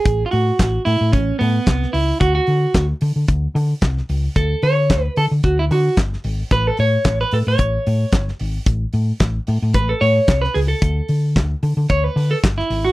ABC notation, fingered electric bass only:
X:1
M:4/4
L:1/16
Q:1/4=112
K:A
V:1 name="Fingered electric bass" clef=bass
A,,,2 A,,2 A,,,2 A,, A,, A,,,2 A,,2 =C,,2 ^C,,2 | D,,2 D,2 D,,2 D, D, D,,2 D,2 =C,,2 ^C,,2 | D,,2 D,2 D,,2 D, D, D,,2 D,2 =G,,,2 ^G,,,2 | A,,,2 A,,2 A,,,2 A,, A,, A,,,2 A,,2 =G,,,2 ^G,,,2 |
A,,,2 A,,2 A,,,2 A,, A,, A,,,2 A,,2 =C,,2 ^C,,2 | D,,2 D,2 D,,2 D, D, D,,2 D,2 =G,,,2 ^G,,,2 |]